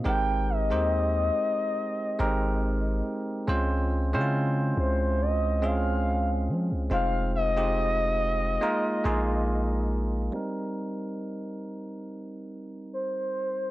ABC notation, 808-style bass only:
X:1
M:4/4
L:1/16
Q:"Swing 16ths" 1/4=70
K:Ebmix
V:1 name="808-style bass" clef=bass
A,,,3 E,,3 z4 A,,,4 z2 | D,,3 D,3 D,,8 F, D,, | F,,,8 z2 B,,,6 | z16 |]